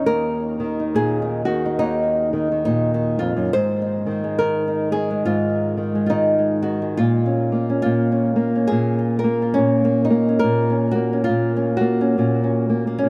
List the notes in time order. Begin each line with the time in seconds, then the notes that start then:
Already playing: D#3
0.06 D#2 A#4
0.60 D#3
0.80 D#4
0.95 A#2 G#4
1.22 D#4
1.45 D#3 F#4
1.66 D#4
1.79 D#2 D#4
2.33 D#3
2.52 D#3
2.65 A#2 D#4
2.94 D#3
3.19 F2 F4
3.36 F#2
3.53 G#2 C5
3.82 D#4
4.06 D#3
4.24 G#3
4.39 D#3 A#4
4.68 D#4
4.92 D#3 G#4
5.11 G#3
5.25 G#2 F4
5.77 D#3
5.95 G#3
6.06 D#4 F4
6.12 D#3
6.39 G#3
6.62 D#3 F#4
6.82 G#3
6.97 A#2 F4
7.26 C#4
7.52 A#3
7.70 C#4
7.82 A#2 F4
8.12 C#4
8.36 A#3
8.56 C#4
8.67 G#4
8.72 A#2
8.99 F4
9.19 A#4
9.24 A#3
9.42 F4
9.54 C#4
9.58 A#2
9.85 A#3
10.05 D#4
10.10 A#3
10.29 C#4
10.39 A#4
10.44 A#2
10.70 C#4
10.91 A#3 F#4
11.13 C#4
11.24 F4
11.29 A#2
11.56 C#4
11.77 F#4
11.81 A#3
12.01 C#4
12.18 A#2 C#4
12.44 C#4
12.70 A#3
12.87 A#3
12.98 C#4
13.03 A#2